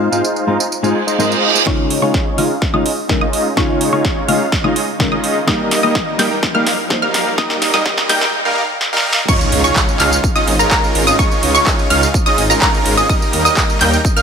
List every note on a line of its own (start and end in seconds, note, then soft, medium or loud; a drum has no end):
0.11 0.20 G#2 medium
0.11 0.21 G#3 medium
0.11 0.45 G#3 medium
0.11 0.21 C4 medium
0.11 0.45 D#4 medium
0.11 0.21 D#4 medium
0.11 0.45 F4 medium
0.11 0.21 F4 loud
0.11 0.45 C5 medium
0.11 0.45 F5 medium
0.11 tambourine medium
0.24 tambourine medium
0.36 tambourine soft
0.47 0.56 G#2 medium
0.47 0.56 G#3 medium
0.47 0.64 G#3 medium
0.47 0.57 C4 medium
0.47 0.64 D#4 medium
0.47 0.57 D#4 medium
0.47 0.64 F4 medium
0.47 0.57 F4 medium
0.47 0.64 C5 medium
0.47 0.64 A#5 medium
0.60 tambourine medium
0.71 tambourine medium
0.71 reverse cymbal medium
0.83 0.92 G#2 medium
0.83 0.92 G#3 medium
0.83 1.00 G#3 medium
0.83 0.92 C4 medium
0.83 1.00 D#4 medium
0.83 0.92 D#4 medium
0.83 1.00 F4 medium
0.83 0.93 F4 loud
0.83 1.00 C5 medium
0.83 1.00 G#5 loud
0.83 tambourine soft
1.07 1.17 G#3 medium
1.07 1.17 D#4 medium
1.07 1.17 F4 medium
1.07 1.17 C5 medium
1.07 1.17 D#5 medium
1.07 tambourine medium
1.18 1.33 G#2 medium
1.18 1.33 G#3 medium
1.18 1.52 G#3 loud
1.18 1.33 C4 medium
1.18 1.52 D#4 medium
1.18 1.33 D#4 medium
1.18 1.52 F4 medium
1.18 1.34 A#4 medium
1.18 1.52 C5 medium
1.18 1.52 D#5 loud
1.18 tambourine medium
1.32 tambourine soft
1.55 1.64 G#3 medium
1.55 1.64 D#4 medium
1.55 1.64 F4 medium
1.55 1.64 C5 medium
1.55 1.64 G#5 medium
1.55 tambourine medium
1.66 1.99 C#3 medium
1.66 1.99 G#3 medium
1.66 1.99 C#4 medium
1.66 1.99 D#4 medium
1.66 2.00 D#4 medium
1.66 1.99 F4 medium
1.66 2.00 F4 medium
1.66 1.99 C#5 medium
1.66 1.99 C#6 medium
1.66 kick loud
1.66 snare soft
1.66 riser medium
1.90 open hi-hat loud
2.02 2.11 C#3 medium
2.02 2.11 G#3 medium
2.02 2.35 G#3 medium
2.02 2.35 C#4 medium
2.02 2.11 C#4 medium
2.02 2.35 D#4 medium
2.02 2.11 D#4 medium
2.02 2.35 F4 medium
2.02 2.12 F4 loud
2.02 2.35 C#5 loud
2.02 2.35 C#6 medium
2.14 kick loud
2.14 snare soft
2.37 2.47 C#3 medium
2.37 2.47 G#3 medium
2.37 2.54 G#3 medium
2.37 2.54 C#4 medium
2.37 2.47 C#4 medium
2.37 2.54 D#4 medium
2.37 2.47 D#4 medium
2.37 2.54 F4 medium
2.37 2.47 F4 medium
2.37 2.54 F5 loud
2.37 2.54 F6 medium
2.37 open hi-hat loud
2.62 kick loud
2.62 snare soft
2.73 2.82 C#3 medium
2.73 2.83 G#3 medium
2.73 2.90 G#3 loud
2.73 2.90 C#4 medium
2.73 2.83 C#4 medium
2.73 2.90 D#4 medium
2.73 2.83 D#4 medium
2.73 2.90 F4 medium
2.73 2.83 F4 loud
2.73 2.90 D#5 loud
2.73 2.90 D#6 loud
2.86 open hi-hat loud
3.09 3.23 C#3 medium
3.09 3.24 G#3 medium
3.09 3.24 C#4 medium
3.09 3.24 D#4 medium
3.09 3.24 A#4 medium
3.09 kick loud
3.09 snare medium
3.21 3.47 G#3 medium
3.21 3.47 C#4 medium
3.21 3.47 D#4 medium
3.21 3.47 F4 medium
3.21 3.47 D#5 medium
3.21 3.47 D#6 loud
3.33 open hi-hat loud
3.56 3.90 C#3 medium
3.56 3.90 G#3 medium
3.56 3.90 C#4 medium
3.56 3.90 D#4 medium
3.56 3.90 F4 medium
3.56 3.90 C#5 loud
3.56 3.90 C#6 loud
3.56 kick loud
3.56 snare medium
3.81 open hi-hat loud
3.92 4.01 C#3 medium
3.92 4.02 G#3 medium
3.92 4.26 G#3 medium
3.92 4.26 C#4 medium
3.92 4.02 C#4 medium
3.92 4.26 D#4 medium
3.92 4.02 D#4 medium
3.92 4.26 F4 medium
3.92 4.02 F4 loud
3.92 4.26 C#5 loud
3.92 4.26 C#6 medium
4.05 kick loud
4.05 snare medium
4.28 4.37 C#3 medium
4.28 4.37 G#3 medium
4.28 4.45 G#3 medium
4.28 4.45 C#4 medium
4.28 4.37 C#4 medium
4.28 4.45 D#4 medium
4.28 4.38 D#4 medium
4.28 4.45 F4 medium
4.28 4.38 F4 medium
4.28 4.45 F5 medium
4.28 4.45 F6 medium
4.28 open hi-hat loud
4.52 kick loud
4.52 snare medium
4.63 4.73 C#3 medium
4.63 4.73 G#3 medium
4.63 4.80 G#3 medium
4.63 4.81 C#4 medium
4.63 4.73 C#4 medium
4.63 4.81 D#4 medium
4.63 4.73 D#4 medium
4.63 4.80 F4 medium
4.63 4.73 F4 loud
4.63 4.80 D#5 loud
4.63 4.80 D#6 loud
4.76 open hi-hat loud
4.99 5.14 C#3 medium
4.99 5.14 G#3 medium
4.99 5.14 C#4 medium
4.99 5.14 D#4 medium
4.99 5.15 A#4 medium
4.99 kick loud
4.99 snare medium
5.12 5.38 G#3 medium
5.12 5.38 C#4 medium
5.12 5.38 D#4 medium
5.12 5.38 F4 medium
5.12 5.38 D#5 loud
5.12 5.38 D#6 loud
5.24 open hi-hat loud
5.47 5.80 G3 medium
5.47 5.80 A#3 medium
5.47 5.80 D#4 medium
5.47 5.81 G4 medium
5.47 5.80 A#4 medium
5.47 5.80 D#5 loud
5.47 5.80 D#6 medium
5.47 kick loud
5.47 snare medium
5.71 snare medium
5.71 open hi-hat loud
5.83 5.92 G3 medium
5.83 6.16 G3 medium
5.83 5.92 A#3 medium
5.83 6.16 A#3 medium
5.83 6.16 D#4 medium
5.83 5.92 D#4 medium
5.83 5.92 G4 loud
5.83 6.16 A#4 medium
5.83 6.16 D#5 loud
5.83 6.16 D#6 loud
5.95 kick loud
5.95 snare medium
6.18 6.28 G3 medium
6.18 6.35 G3 medium
6.18 6.35 A#3 medium
6.18 6.28 A#3 medium
6.18 6.35 D#4 medium
6.18 6.28 D#4 medium
6.18 6.28 G4 medium
6.18 6.35 A#4 medium
6.18 6.35 G5 loud
6.18 6.35 G6 medium
6.18 snare medium
6.18 open hi-hat loud
6.43 kick loud
6.43 snare medium
6.54 6.63 G3 loud
6.54 6.71 G3 loud
6.54 6.64 A#3 medium
6.54 6.71 A#3 medium
6.54 6.71 D#4 medium
6.54 6.64 D#4 medium
6.54 6.64 G4 loud
6.54 6.71 A#4 medium
6.54 6.71 F5 loud
6.54 6.71 F6 loud
6.67 snare medium
6.67 open hi-hat loud
6.90 7.04 G3 medium
6.90 7.05 A#3 medium
6.90 7.05 D#4 medium
6.90 7.05 C5 medium
6.90 kick loud
6.90 snare medium
7.02 7.28 G3 medium
7.02 7.28 A#3 medium
7.02 7.28 D#4 medium
7.02 7.28 A#4 medium
7.02 7.28 F5 loud
7.02 7.28 F6 loud
7.14 snare medium
7.14 open hi-hat loud
7.37 7.71 G3 medium
7.37 7.71 A#3 medium
7.37 7.71 D#4 medium
7.37 7.71 G4 loud
7.37 7.71 A#4 medium
7.37 7.71 D#5 loud
7.37 7.71 D#6 medium
7.37 kick loud
7.37 snare medium
7.50 snare medium
7.62 snare loud
7.62 open hi-hat loud
7.73 7.82 G3 loud
7.73 8.07 G3 medium
7.73 7.83 A#3 medium
7.73 8.07 A#3 medium
7.73 8.07 D#4 medium
7.73 7.83 D#4 medium
7.73 7.83 G4 loud
7.73 8.07 A#4 medium
7.73 8.07 D#5 loud
7.73 8.07 D#6 loud
7.73 snare medium
7.86 kick loud
7.86 snare medium
7.98 snare medium
8.09 8.18 G3 medium
8.09 8.26 G3 medium
8.09 8.18 A#3 medium
8.09 8.26 A#3 medium
8.09 8.26 D#4 medium
8.09 8.18 D#4 medium
8.09 8.19 G4 medium
8.09 8.26 A#4 medium
8.09 8.26 G5 loud
8.09 8.26 G6 loud
8.09 snare loud
8.09 open hi-hat loud
8.21 snare medium
8.45 8.61 G3 loud
8.45 8.61 A#3 loud
8.45 8.61 D#4 medium
8.45 8.61 A#4 medium
8.45 8.61 F5 loud
8.81 snare medium
8.93 9.19 G3 loud
8.93 9.19 A#3 medium
8.93 9.19 D#4 medium
8.93 9.19 A#4 medium
8.93 9.19 F5 loud
8.93 snare medium
9.13 snare loud
9.28 9.61 G#3 medium
9.28 9.61 C#4 medium
9.28 9.61 D#4 medium
9.28 9.61 F4 medium
9.28 9.61 C#5 loud
9.28 9.61 C#6 loud
9.28 kick loud
9.28 tambourine medium
9.28 crash loud
9.28 impact medium
9.41 tambourine soft
9.52 9.68 C#2 loud
9.52 open hi-hat loud
9.64 9.97 G#3 medium
9.64 9.97 C#4 medium
9.64 9.97 D#4 medium
9.64 9.97 F4 medium
9.64 9.97 C#5 loud
9.64 9.97 C#6 loud
9.64 tambourine medium
9.76 kick loud
9.76 clap loud
9.76 tambourine medium
9.89 tambourine soft
10.00 10.15 C#2 medium
10.00 10.16 G#3 medium
10.00 10.16 C#4 medium
10.00 10.16 D#4 medium
10.00 10.16 F4 medium
10.00 10.16 F5 loud
10.00 10.16 F6 loud
10.00 clap medium
10.00 open hi-hat loud
10.13 tambourine medium
10.24 kick loud
10.24 tambourine medium
10.36 10.52 G#3 loud
10.36 10.52 C#4 loud
10.36 10.52 D#4 medium
10.36 10.52 F4 medium
10.36 10.52 D#5 loud
10.36 10.52 D#6 loud
10.36 tambourine soft
10.47 10.63 G#1 medium
10.47 open hi-hat loud
10.59 10.70 G#3 medium
10.59 10.70 C#4 medium
10.59 10.70 D#4 medium
10.59 10.70 F4 medium
10.59 10.70 A#4 medium
10.59 10.70 A#5 medium
10.59 tambourine medium
10.71 11.04 G#3 loud
10.71 11.04 C#4 medium
10.71 11.04 D#4 loud
10.71 11.04 F4 medium
10.71 11.04 A#4 loud
10.71 11.04 A#5 loud
10.71 kick loud
10.71 clap loud
10.71 tambourine medium
10.84 tambourine soft
10.95 11.11 G#1 medium
10.95 open hi-hat loud
11.07 11.16 G#3 medium
11.07 11.16 C#4 medium
11.07 11.16 D#4 medium
11.07 11.16 F4 medium
11.07 11.16 D#5 loud
11.07 11.16 D#6 loud
11.07 tambourine medium
11.19 11.52 G#3 medium
11.19 11.52 C#4 medium
11.19 11.52 D#4 medium
11.19 11.52 F4 medium
11.19 11.52 C#5 loud
11.19 11.52 C#6 medium
11.19 kick loud
11.19 tambourine medium
11.32 tambourine soft
11.43 11.58 C#2 loud
11.43 open hi-hat loud
11.55 11.88 G#3 medium
11.55 11.88 C#4 medium
11.55 11.88 D#4 medium
11.55 11.88 F4 medium
11.55 11.88 C#5 loud
11.55 11.88 C#6 loud
11.55 tambourine medium
11.67 kick loud
11.67 clap loud
11.67 tambourine medium
11.79 tambourine soft
11.90 12.06 C#2 medium
11.90 12.07 G#3 medium
11.90 12.07 C#4 medium
11.90 12.07 D#4 medium
11.90 12.07 F4 medium
11.90 12.07 F5 loud
11.90 12.07 F6 loud
11.90 open hi-hat loud
12.03 tambourine medium
12.14 kick loud
12.14 tambourine medium
12.26 12.42 G#3 loud
12.26 12.42 C#4 medium
12.26 12.42 D#4 medium
12.26 12.42 F4 medium
12.26 12.42 D#5 loud
12.26 12.42 D#6 loud
12.26 tambourine soft
12.38 12.54 G#1 medium
12.38 open hi-hat loud
12.50 12.60 G#3 medium
12.50 12.60 C#4 medium
12.50 12.60 D#4 medium
12.50 12.60 F4 medium
12.50 12.60 A#4 medium
12.50 12.60 A#5 medium
12.50 tambourine medium
12.62 12.95 G#3 loud
12.62 12.95 C#4 medium
12.62 12.95 D#4 medium
12.62 12.95 F4 medium
12.62 12.95 A#4 loud
12.62 12.95 A#5 loud
12.62 kick loud
12.62 clap loud
12.62 tambourine medium
12.74 tambourine soft
12.86 13.01 G#1 medium
12.86 open hi-hat loud
12.97 13.07 G#3 medium
12.97 13.07 C#4 medium
12.97 13.07 D#4 medium
12.97 13.07 F4 medium
12.97 13.07 D#5 loud
12.97 13.07 D#6 loud
12.97 tambourine medium
13.09 13.42 G3 medium
13.09 13.42 A#3 medium
13.09 13.42 D#4 medium
13.09 13.42 A#4 medium
13.09 13.42 D#5 loud
13.09 13.42 D#6 loud
13.09 kick loud
13.09 tambourine medium
13.22 tambourine soft
13.33 13.49 D#2 loud
13.33 open hi-hat loud
13.45 13.78 G3 medium
13.45 13.78 A#3 medium
13.45 13.78 D#4 medium
13.45 13.78 A#4 medium
13.45 13.78 D#5 loud
13.45 13.78 D#6 loud
13.45 tambourine medium
13.57 kick loud
13.57 clap loud
13.57 tambourine medium
13.70 tambourine soft
13.81 13.96 D#2 medium
13.81 13.97 G3 medium
13.81 13.97 A#3 medium
13.81 13.97 D#4 medium
13.81 13.97 A#4 medium
13.81 13.97 G5 loud
13.81 13.97 G6 loud
13.81 clap medium
13.81 open hi-hat loud
13.94 tambourine medium
14.05 kick loud
14.05 tambourine medium
14.17 14.22 G3 loud
14.17 14.22 A#3 medium
14.17 14.22 D#4 medium
14.17 14.22 A#4 medium
14.17 14.22 F5 loud
14.17 14.22 F6 loud
14.17 tambourine soft